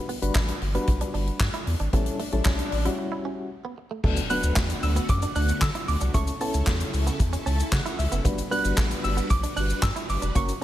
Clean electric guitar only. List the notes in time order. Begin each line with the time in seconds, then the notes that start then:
0.09 B3
0.22 muted clean electric guitar stroke
0.35 A3
0.62 muted clean electric guitar stroke
0.75 B3
0.88 muted clean electric guitar stroke
1.01 D4
1.14 D4
1.54 E4
1.67 muted clean electric guitar stroke
1.80 D4
1.93 B3
2.20 A3
2.33 muted clean electric guitar stroke
2.46 C#4
2.72 muted clean electric guitar stroke
2.85 E4
2.99 muted clean electric guitar stroke
3.12 E4
3.25 C#4
3.65 B3
3.78 muted clean electric guitar stroke
3.91 A3
4.04 A3
4.30 B3
4.44 muted clean electric guitar stroke
4.57 A3
4.83 muted clean electric guitar stroke
4.96 B3
5.10 muted clean electric guitar stroke
5.23 D4
5.36 D4
5.75 E4
5.88 muted clean electric guitar stroke
6.01 D4
6.15 A3
6.41 B3
6.54 muted clean electric guitar stroke
6.67 A3
6.94 muted clean electric guitar stroke
7.07 B3
7.20 muted clean electric guitar stroke
7.33 C#4
7.46 C#4
7.86 E4
7.99 muted clean electric guitar stroke
8.12 B3
8.25 A3
8.51 B3
8.64 muted clean electric guitar stroke
8.78 A3
9.04 muted clean electric guitar stroke
9.17 B3
9.30 muted clean electric guitar stroke
9.43 D4
9.56 D4
9.96 E4
10.09 muted clean electric guitar stroke
10.22 D4
10.35 A#3